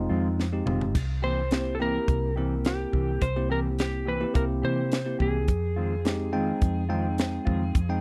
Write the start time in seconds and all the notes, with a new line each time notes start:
Already playing: G#3 C4 D#4 F4
0.10 F2 D#3 G#3 C4 F4
0.40 snare
0.53 G#3 C4 D#4 G4
0.66 F1 D#3 G#3 C4 F4, mid tom
0.81 floor tom
0.95 C2, kick, closed hi-hat, crash
1.22 E3 A#3 C4 G4 C5
1.51 A#3 C4 E4 G4, snare, closed hi-hat
1.75 A4
1.79 E3 A#3 C4 E4 G4 A#4
2.08 C2, kick, closed hi-hat
2.36 E3 A#3 C4 E4 G4 A#4
2.65 G4, snare, closed hi-hat
2.92 C2 E3 A#3 C4 G4, kick
3.21 C2 C5, kick, closed hi-hat
3.36 A#3 C4 E4 G4
3.50 E3 A#3 C4 G4 A#4
3.79 G4, snare, closed hi-hat
4.05 E3 A#3 C4 G4 B4
4.20 A#3 C4 E4 G4
4.34 C2 A#3 C4 E4 G4 A#4, kick, closed hi-hat
4.62 C3 E3 A#3 C4 G4 C5
4.92 snare, closed hi-hat
5.06 A#3 C4 E4 G4
5.19 C2 E3 A#3 C4 G4 G#4, kick
5.48 F2, kick, closed hi-hat
5.76 D#3 G#3 C4 F4
6.05 G#3 C4 D#4 G4, snare, closed hi-hat
6.33 D#3 G#3 C4 D#4 F4 G5
6.62 F2, kick, closed hi-hat
6.89 D#3 G#3 C4 D#4 F4 G5
7.18 snare, closed hi-hat
7.45 F2 D#3 G#3 C4 F4, kick
7.75 F2, kick, closed hi-hat
7.89 G#3 C4 D#4 G5